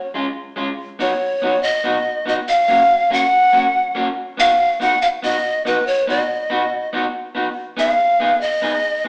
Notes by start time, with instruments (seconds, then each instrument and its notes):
Already playing: pan flute C#5
0.14 clean electric guitar G#3 C#4 F4
0.56 clean electric guitar G#3 C#4 F4
0.99 clean electric guitar B3 D#4 F#4, pan flute C#5
1.42 clean electric guitar B3 D#4 F#4
1.63 pan flute D#5
1.84 clean electric guitar B3 D#4 F#4
2.25 clean electric guitar B3 D#4 F#4, pan flute D#5
2.48 pan flute F5
2.68 clean electric guitar A#3 C#4 F#4
3.10 clean electric guitar A#3 C#4 F#4, pan flute F#5
3.53 clean electric guitar A#3 C#4 F#4
3.95 clean electric guitar A#3 C#4 F#4
4.37 clean electric guitar B3 D#4 F#4, pan flute F5
4.80 clean electric guitar B3 D#4 F#4, pan flute F#5
5.02 pan flute F5
5.22 clean electric guitar B3 D#4 F#4, pan flute D#5
5.65 clean electric guitar B3 D#4 F#4, pan flute B4
5.87 pan flute C#5
6.07 clean electric guitar B3 D#4 F#4, pan flute D#5
6.50 clean electric guitar B3 D#4 F#4
6.93 clean electric guitar B3 D#4 F#4
7.35 clean electric guitar B3 D#4 F#4
7.77 clean electric guitar B3 D#4 G#4, pan flute E5
7.90 pan flute F5
8.20 clean electric guitar B3 D#4 G#4
8.41 pan flute D#5
8.62 clean electric guitar B3 D#4 G#4
9.04 clean electric guitar B3